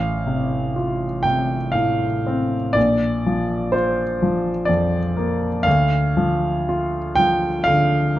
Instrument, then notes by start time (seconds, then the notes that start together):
grand piano
Already playing: A1 F5
0.27 C3
0.76 F4
1.23 C3 G5
1.72 A2 F5
2.27 C4
2.73 A#1 D5
3.26 F3
3.72 F4 C5
4.22 F3
4.65 F2 D5
5.17 A#3
5.63 D2 F5
6.17 F3
6.69 F4
7.15 F3 G5
7.64 D3 F5